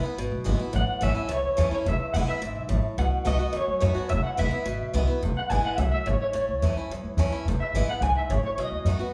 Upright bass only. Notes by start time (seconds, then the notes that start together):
0.03 muted upright bass stroke
0.17 G#1
0.32 B1
0.46 G#1
0.59 muted upright bass stroke
0.73 A1
0.88 muted upright bass stroke
1.02 A1
1.16 muted upright bass stroke
1.29 C#2
1.43 E2
1.58 E2
1.71 muted upright bass stroke
1.85 E1
2.00 muted upright bass stroke
2.14 E1
2.28 muted upright bass stroke
2.42 G#1
2.56 B1
2.70 A1
2.84 muted upright bass stroke
2.98 B1
3.12 muted upright bass stroke
3.26 B1
3.41 muted upright bass stroke
3.54 D#2
3.68 F#2
3.82 F#2
3.96 muted upright bass stroke
4.11 E1
4.24 muted upright bass stroke
4.38 E1
4.52 muted upright bass stroke
4.66 G#1
4.80 B1
4.94 B1
5.08 muted upright bass stroke
5.22 E1
5.36 muted upright bass stroke
5.50 G#1
5.64 muted upright bass stroke
5.78 B1
5.92 muted upright bass stroke
6.07 G#1
6.20 muted upright bass stroke
6.35 A1
6.48 C#2
6.62 E2
6.76 muted upright bass stroke
6.90 F#2
7.04 F#2
7.17 E2
7.31 muted upright bass stroke
7.45 E1
7.60 muted upright bass stroke
7.73 G#1
7.87 muted upright bass stroke
8.01 B1
8.15 muted upright bass stroke
8.29 G#1
8.43 muted upright bass stroke
8.57 B1
8.72 D#2
8.85 F#2
8.99 muted upright bass stroke